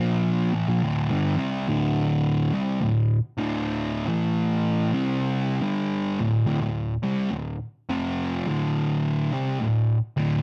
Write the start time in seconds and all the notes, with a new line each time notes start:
0.00 A#2 F3 A#3
0.54 A2 E3
0.68 A#2 F3
0.83 D2 A2
1.10 G2 D3
1.37 C3 G3 C4
1.68 D2 A2 D3
2.53 C3 G3
2.81 D2 A2
3.38 D2 A2 D3
4.07 A2 E3 A3
4.93 C3 G3 C4
5.62 G2 D3 G3
6.19 D2 A2
6.47 D2 A2
6.61 D2 A2
7.03 C3 G3
7.31 D2 A2
7.90 F2 C3 F3
8.48 D2 A2 D3
9.32 C3 G3
9.60 D2 A2
10.17 D2 A2 D3